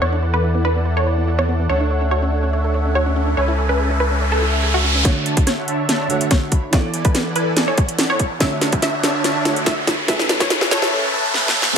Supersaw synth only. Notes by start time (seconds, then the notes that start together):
0.01 E3 E4 A4 D5 F#5
1.69 D4 A4 C#5 E5 F#5
3.37 C#4 A4 B4 E5 G#5
5.05 D3 D4 C#5 E5 F#5
5.26 D3 D4 C#5 E5 A5
5.37 D3 D4 C#5 E5 A5
5.58 D3 D4 C#5 E5 F#5
5.68 D3 D4 C#5 E5 A5
5.89 D3 D4 C#5 E5 A5
6.10 D3 D4 C#5 E5 F#5
6.21 D3 D4 C#5 E5 F#5
6.31 D3 D4 C#5 E5 F#5
6.52 D3 D4 C#5 E5 B5
6.73 E3 E4 A4 D5 F#5
6.94 E3 E4 A4 D5 G#5
7.05 E3 E4 A4 D5 G#5
7.26 E3 E4 A4 D5 F#5
7.36 E3 E4 A4 D5 G#5
7.57 E3 E4 A4 D5 G#5
7.78 E3 E4 A4 D5 F#5
7.89 E3 E4 A4 D5 F#5
7.99 E3 E4 A4 D5 F#5
8.19 E3 E4 A4 D5 A5
8.40 D3 D4 C#5 E5 F#5
8.61 D3 D4 C#5 E5 A5
8.72 D3 D4 C#5 E5 A5
8.94 D3 D4 C#5 E5 F#5
9.03 D3 D4 C#5 E5 A5
9.24 D3 D4 C#5 E5 A5
9.45 D3 D4 C#5 E5 F#5
9.56 D3 D4 C#5 E5 F#5
9.66 D3 D4 C#5 E5 F#5
9.88 D3 D4 C#5 E5 B5
10.09 C#4 A4 B4 E5 G#5
10.29 C#4 A4 B4 E5 A5
10.41 C#4 A4 B4 E5 A5
10.61 C#4 A4 B4 E5 G#5
10.71 C#4 A4 B4 E5 A5
10.92 C#4 A4 B4 E5 A5
11.13 C#4 A4 B4 E5 A5
11.34 C#4 A4 B4 E5 B5
11.45 C#4 A4 B4 E5 A5
11.55 C#4 A4 B4 E5 A5